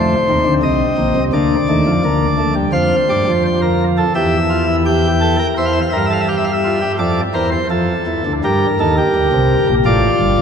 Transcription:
0.00 0.15 F2 medium
0.00 0.15 F3 medium
0.00 0.15 A3 medium
0.00 0.54 C5 medium
0.29 0.43 D#2 medium
0.29 0.43 D#3 medium
0.29 1.20 C4 medium
0.46 0.60 D2 medium
0.46 0.60 D3 medium
0.63 0.85 C2 medium
0.63 0.84 C3 medium
0.63 1.24 D#5 medium
0.98 1.13 A#1 medium
0.98 1.13 A#2 medium
1.16 1.31 C2 medium
1.16 1.31 C3 medium
1.33 1.55 D2 medium
1.33 1.55 D3 medium
1.33 1.55 A#3 medium
1.33 2.54 D5 medium
1.69 1.84 D#2 medium
1.69 1.84 D#3 medium
1.69 1.91 A3 medium
1.87 2.02 F2 medium
1.87 2.02 F3 medium
2.04 2.64 D2 medium
2.04 2.65 D3 medium
2.04 2.26 A#3 medium
2.38 2.53 A3 medium
2.55 2.71 G3 medium
2.72 2.95 F2 medium
2.72 2.95 F3 medium
2.72 3.43 C5 medium
2.72 2.95 F5 medium
3.09 3.25 G2 medium
3.09 3.24 G3 medium
3.09 3.31 D5 medium
3.27 4.03 F2 medium
3.27 4.03 F3 medium
3.45 3.60 C5 medium
3.62 3.84 A#4 medium
3.98 4.13 A4 medium
4.15 5.37 E2 medium
4.15 5.37 E3 medium
4.15 4.37 G4 medium
4.15 4.76 E5 medium
4.50 4.65 F4 medium
4.67 4.83 E4 medium
4.86 5.07 G4 medium
4.86 5.47 G5 medium
5.21 5.36 A4 medium
5.39 5.54 A#4 medium
5.57 5.79 E2 medium
5.57 5.79 E3 medium
5.57 5.79 C5 medium
5.57 5.65 E5 medium
5.66 5.73 F5 medium
5.73 5.80 E5 medium
5.81 5.89 F5 medium
5.90 6.84 G2 medium
5.90 6.84 G3 medium
5.90 6.07 A#4 medium
5.90 5.97 E5 medium
5.98 6.05 F5 medium
6.06 6.13 E5 medium
6.10 6.25 A4 medium
6.10 6.20 F5 medium
6.21 6.28 E5 medium
6.28 6.50 G4 medium
6.28 6.36 F5 medium
6.37 6.44 E5 medium
6.44 6.52 F5 medium
6.53 6.92 E5 medium
6.64 6.79 F4 medium
6.81 6.96 G4 medium
6.99 7.21 F2 medium
6.99 7.20 F3 medium
6.99 7.21 A4 medium
6.99 7.21 D5 medium
7.34 7.56 E2 medium
7.34 7.56 E3 medium
7.34 7.49 A#4 medium
7.34 7.50 C5 medium
7.52 7.67 C5 medium
7.70 7.92 F2 medium
7.70 7.92 F3 medium
7.70 8.32 A4 medium
8.07 8.22 E2 medium
8.07 8.22 E3 medium
8.26 8.41 D2 medium
8.26 8.41 D3 medium
8.44 8.66 G2 medium
8.44 8.66 G3 medium
8.44 8.66 G4 medium
8.44 9.67 A#4 medium
8.80 9.02 D#2 medium
8.80 9.02 D#3 medium
8.80 8.95 A4 medium
8.98 9.74 G4 medium
9.15 9.30 D2 medium
9.15 9.30 D3 medium
9.33 9.55 C2 medium
9.33 9.55 C3 medium
9.69 9.84 A#1 medium
9.69 9.84 A#2 medium
9.85 10.08 A1 medium
9.85 10.08 A2 medium
9.85 10.42 F4 medium
9.85 10.42 D5 medium
10.20 10.36 G1 medium
10.20 10.36 G2 medium
10.38 10.42 F1 medium
10.38 10.42 F2 medium

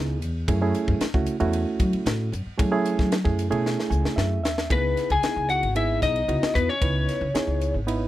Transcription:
0.00 0.21 C#2 medium
0.00 0.18 B3 medium
0.00 0.18 D#4 medium
0.00 0.18 E4 medium
0.00 0.18 G#4 medium
0.21 0.44 E2 medium
0.21 hi-hat pedal medium
0.21 ride medium
0.48 0.71 F#2 loud
0.48 0.59 A3 medium
0.48 0.59 C#4 medium
0.48 0.59 E4 medium
0.48 0.59 G#4 medium
0.48 kick loud
0.48 ride medium
0.62 1.06 A3 medium
0.62 1.06 C#4 medium
0.62 1.06 E4 medium
0.62 1.06 G#4 medium
0.75 hi-hat pedal medium
0.75 ride medium
0.88 0.99 F#2 medium
0.88 kick medium
1.00 muted upright bass stroke soft
1.00 snare medium
1.00 ride medium
1.14 1.25 C#2 medium
1.14 1.36 A3 medium
1.14 1.36 C#4 medium
1.14 1.36 E4 medium
1.14 1.36 F#4 medium
1.14 kick medium
1.26 hi-hat pedal medium
1.26 ride medium
1.40 1.64 E2 medium
1.40 2.29 A3 medium
1.40 2.29 C#4 medium
1.40 2.29 E4 medium
1.40 2.29 F#4 loud
1.40 ride medium
1.53 ride medium
1.80 1.91 F#3 medium
1.80 kick medium
1.80 hi-hat pedal medium
1.80 ride medium
1.93 muted upright bass stroke soft
1.93 ride medium
2.06 2.29 A2 medium
2.06 snare loud
2.06 ride medium
2.32 2.44 F#2 medium
2.32 hi-hat pedal medium
2.32 ride medium
2.46 muted upright bass stroke soft
2.58 2.94 F#3 loud
2.58 2.70 A3 medium
2.58 2.70 C#4 medium
2.58 2.70 E4 medium
2.58 2.70 G#4 medium
2.58 kick loud
2.58 ride medium
2.72 3.16 A3 medium
2.72 3.16 C#4 medium
2.72 3.16 E4 medium
2.72 3.16 G#4 loud
2.86 hi-hat pedal medium
2.86 ride medium
2.99 3.22 F#3 medium
2.99 kick medium
2.99 snare soft
3.12 snare medium
3.12 ride medium
3.24 3.48 F#2 medium
3.24 3.47 A3 medium
3.24 3.47 C#4 medium
3.24 3.47 E4 medium
3.24 3.47 G#4 medium
3.24 kick medium
3.39 hi-hat pedal medium
3.39 ride medium
3.50 3.74 B2 medium
3.50 4.40 A3 medium
3.50 4.40 C#4 medium
3.50 4.40 E4 medium
3.50 4.40 G#4 medium
3.50 ride medium
3.66 snare medium
3.80 snare medium
3.90 4.02 C#2 medium
3.90 4.15 G#5 medium
3.90 hi-hat pedal medium
4.04 muted upright bass stroke soft
4.04 snare medium
4.16 4.43 F#2 medium
4.16 4.41 E5 medium
4.16 snare medium
4.43 4.67 D#2 medium
4.43 4.68 E5 medium
4.43 snare loud
4.43 hi-hat pedal medium
4.58 snare medium
4.70 4.94 C#2 medium
4.70 5.14 B3 medium
4.70 5.09 B3 medium
4.70 5.14 D#4 medium
4.70 5.15 E4 medium
4.70 5.15 G#4 medium
4.70 5.12 B4 medium
4.70 kick loud
4.70 ride medium
4.97 snare soft
4.97 hi-hat pedal medium
4.97 ride medium
5.10 5.21 C#2 medium
5.10 5.48 G#4 medium
5.10 5.51 G#5 medium
5.10 ride medium
5.23 5.68 B3 medium
5.23 5.68 D#4 medium
5.23 5.68 E4 medium
5.23 5.68 G#4 medium
5.23 muted upright bass stroke soft
5.23 snare medium
5.23 ride medium
5.36 5.59 C#2 medium
5.49 5.75 F#4 medium
5.49 5.76 F#5 medium
5.49 hi-hat pedal medium
5.49 ride soft
5.63 5.97 G#1 medium
5.63 ride medium
5.75 6.20 B3 medium
5.75 6.20 D#4 medium
5.75 6.20 E4 medium
5.75 6.01 E4 medium
5.75 6.21 G#4 medium
5.75 6.02 E5 medium
5.75 ride medium
6.02 6.25 B1 medium
6.02 6.52 D#4 medium
6.02 6.57 D#5 medium
6.02 kick medium
6.02 snare soft
6.02 hi-hat pedal medium
6.02 ride medium
6.16 ride soft
6.28 6.40 C#2 medium
6.28 6.73 B3 medium
6.28 6.73 D#4 medium
6.28 6.73 E4 medium
6.28 6.73 F#4 medium
6.28 ride medium
6.42 muted upright bass stroke soft
6.42 snare loud
6.55 6.67 E2 medium
6.55 6.70 B3 medium
6.55 6.69 B4 medium
6.55 kick medium
6.55 hi-hat pedal medium
6.55 ride medium
6.69 7.75 C#4 medium
6.69 7.75 C#5 medium
6.81 7.05 C#2 medium
6.81 7.26 B3 medium
6.81 7.26 D#4 medium
6.81 7.26 E4 medium
6.81 7.26 B4 medium
6.81 kick loud
6.81 ride medium
7.09 snare soft
7.09 hi-hat pedal medium
7.09 ride medium
7.21 7.33 C#2 medium
7.34 7.79 B3 medium
7.34 7.79 D#4 medium
7.34 7.79 E4 medium
7.34 7.79 G#4 medium
7.34 muted upright bass stroke soft
7.34 snare medium
7.34 ride medium
7.47 7.71 C#2 medium
7.61 hi-hat pedal medium
7.61 ride medium
7.74 8.08 G#1 medium
7.87 8.08 B3 medium
7.87 8.08 D#4 medium
7.87 8.08 E4 medium
7.87 8.08 B4 medium
7.87 ride medium

